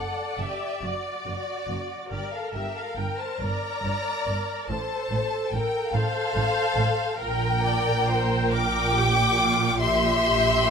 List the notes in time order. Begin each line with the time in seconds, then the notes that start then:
Already playing: A4 D5 F#5
0.39 F#1 F#2 G4 E5
0.82 F#1 F#2 F#4 D5
1.27 F#1 F#2
1.70 F#1 F#2
2.11 G1 G2 G4 A#4 D5
2.34 A4 F5
2.54 G1 G2 G4 E5
2.76 A4 F5
2.97 G1 G2 A#4 G5
3.18 C5 A5
3.39 G1 G2 D5 A#5
3.83 G1 G2
4.26 G1 G2
4.68 A1 A2 A4 C5 A5
5.11 A1 A2
5.52 A1 A2 A#4 G5
5.93 A1 A2 A4 C5 F5
6.35 A1 A2
6.76 A1 A2
7.18 A#1 A#2 A#4 G5
7.62 D5
8.08 C5
8.53 A#4 G5 D6
8.97 G4
9.38 F4
9.80 G4 E5 C6